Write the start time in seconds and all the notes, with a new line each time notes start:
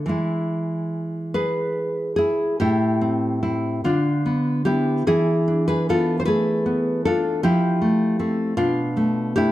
0.06 E3 G#3 E4
1.34 G#4 B4
2.16 E4 G#4
2.60 A2 E4 G4
3.01 C4
3.43 C4 E4
3.84 D3 D4 F4
4.26 B3
4.65 B3 D4 E4 G4
5.07 E3 E4 G#4
5.48 D4
5.68 G#4 B4
5.89 B3 F4 A4
6.20 C5
6.25 A3 G#4 B4
6.66 B3
7.05 D4 F4 A4
7.43 F3 E4 G4
7.82 A3
8.19 A3 C4
8.57 B2 D4 F4
8.97 A3
9.36 A3 D4 E4 G4